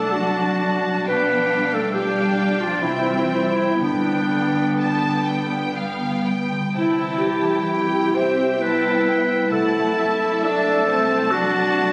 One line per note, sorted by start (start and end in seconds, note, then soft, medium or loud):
0.00 1.04 C2 soft
0.00 1.12 C3 soft
0.00 0.34 F#3 soft
0.00 0.11 A3 soft
0.00 1.12 C4 soft
0.00 1.06 D4 soft
0.00 1.72 D4 soft
0.00 1.12 F#4 soft
0.00 0.14 A4 soft
0.00 1.04 F#5 soft
0.00 1.04 A5 soft
0.10 1.07 F#3 soft
0.10 0.58 A3 soft
0.10 1.07 F#4 medium
0.35 0.84 F#3 soft
0.59 1.12 A3 soft
0.85 1.12 F#3 soft
1.07 2.80 B1 soft
1.07 2.88 B2 soft
1.07 1.72 B3 medium
1.07 1.90 D4 soft
1.07 1.75 B4 medium
1.07 1.90 F5 soft
1.07 1.91 G5 soft
1.31 2.88 F3 soft
1.53 3.06 G3 soft
1.73 1.94 A3 soft
1.73 2.15 D4 soft
1.73 1.93 A4 medium
1.93 2.60 G3 medium
1.93 2.82 D4 soft
1.93 2.37 F4 soft
1.93 2.62 G4 medium
1.93 2.82 F5 soft
1.93 2.82 G5 soft
2.16 2.60 D4 soft
2.38 2.88 F4 soft
2.61 2.84 F3 soft
2.61 2.88 D4 soft
2.61 2.84 F4 soft
2.83 3.79 C2 soft
2.83 3.85 C3 soft
2.83 3.81 E3 soft
2.83 3.81 C4 soft
2.83 2.94 E4 soft
2.83 3.81 E5 soft
2.83 3.79 G5 soft
2.93 3.02 F4 soft
3.00 3.10 E4 soft
3.07 4.29 G3 soft
3.07 3.19 F4 soft
3.17 3.27 E4 soft
3.25 3.35 F4 soft
3.32 3.85 C4 soft
3.32 3.44 E4 soft
3.42 3.53 F4 soft
3.51 3.80 E4 medium
3.56 3.85 E4 soft
3.80 6.53 G1 soft
3.80 5.23 G2 soft
3.80 6.79 G2 soft
3.80 5.71 D3 soft
3.80 6.49 B3 soft
3.80 5.72 D4 medium
3.80 6.49 G5 soft
3.80 4.67 G5 soft
4.05 5.99 D3 soft
4.30 5.75 G3 soft
4.54 5.02 B3 soft
4.78 5.26 G4 soft
4.78 5.23 A5 soft
5.03 5.50 B3 soft
5.26 7.68 G4 soft
5.26 5.75 G5 soft
5.51 6.79 B3 soft
5.75 6.24 G3 soft
5.75 6.25 F5 soft
6.00 6.49 D3 soft
6.25 7.21 G3 soft
6.25 6.73 G5 soft
6.50 6.79 D3 soft
6.74 9.47 C2 soft
6.74 9.50 C3 soft
6.74 8.12 E3 soft
6.74 7.19 E4 soft
6.74 8.17 E4 medium
6.74 9.47 G5 soft
6.74 7.65 A5 soft
6.98 8.82 C4 soft
7.22 8.60 G3 soft
7.22 7.67 G4 soft
7.45 7.90 E4 soft
7.68 8.59 G4 soft
7.68 8.14 G4 soft
7.68 8.16 G5 soft
7.92 8.37 E4 soft
8.15 8.61 C4 soft
8.15 9.55 G4 soft
8.15 8.63 C5 medium
8.15 8.61 E5 soft
8.39 9.55 E4 soft
8.60 9.05 G3 soft
8.60 9.49 B3 medium
8.60 9.49 E4 soft
8.60 9.51 B4 medium
8.60 9.07 A5 soft
8.83 9.27 C4 soft
9.06 9.55 G3 soft
9.06 9.51 G5 soft
9.28 11.93 C4 soft
9.50 11.93 C2 medium
9.50 10.84 C3 medium
9.50 11.93 C3 soft
9.50 10.42 A3 medium
9.50 10.42 E4 soft
9.50 10.42 A4 medium
9.50 9.96 F#5 soft
9.50 10.42 A5 soft
9.74 11.50 F#3 soft
9.96 11.29 A3 soft
9.96 11.30 E5 medium
10.21 10.65 D4 soft
10.43 11.29 A3 medium
10.43 10.88 D4 medium
10.43 10.86 F#4 soft
10.43 11.33 A4 medium
10.43 11.93 A5 medium
10.66 11.08 D4 soft
10.87 11.30 C4 medium
10.87 11.93 F#4 soft
11.09 11.93 D4 soft
11.30 11.93 F#3 medium
11.30 11.72 A3 soft
11.30 11.93 D4 medium
11.30 11.93 F#4 medium
11.30 11.93 F#5 medium
11.52 11.93 F#3 soft
11.73 11.93 A3 soft